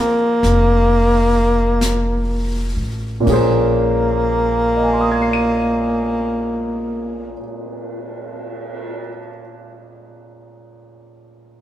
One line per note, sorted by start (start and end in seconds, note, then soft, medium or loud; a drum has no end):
0.00 3.27 F3 soft
0.00 3.22 A#3 soft
0.00 2.77 A#3 medium
0.00 3.27 D#4 soft
0.00 3.27 G#4 soft
0.00 3.28 C5 soft
0.43 2.72 F1 medium
0.43 brush sweep soft
0.43 snare soft
1.81 brush sweep soft
1.81 snare soft
1.81 hi-hat pedal soft
2.77 3.24 A1 soft
3.20 7.31 A#2 soft
3.20 7.34 A#3 soft
3.26 7.33 A#1 medium
3.26 7.35 A#3 medium
3.26 7.36 C#4 soft
3.26 7.40 G#4 soft
3.26 kick soft
3.26 crash soft
3.33 7.43 C5 medium
4.26 cymbal swell soft
4.76 8.83 D#5 soft
4.83 8.90 G#5 soft
4.92 8.99 C6 soft
5.01 9.07 D#6 soft
5.11 9.18 G#6 soft
5.22 9.28 C7 soft
5.33 9.40 D#7 soft